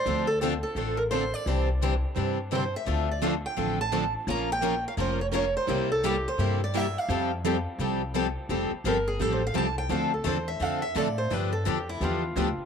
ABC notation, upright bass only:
X:1
M:4/4
L:1/8
Q:"Swing" 1/4=171
K:F
V:1 name="Upright bass" clef=bass
D,,4 A,,,4 | C,,4 G,,4 | D,,4 A,,,4 | B,,,4 F,,,4 |
C,,4 G,,4 | F,,4 C,,4 | F,,, z G,,,2 A,,,2 C,,2 | D,,2 E,,2 F,,2 A,,2 |
G,,2 F,,2 E,,2 D,, z |]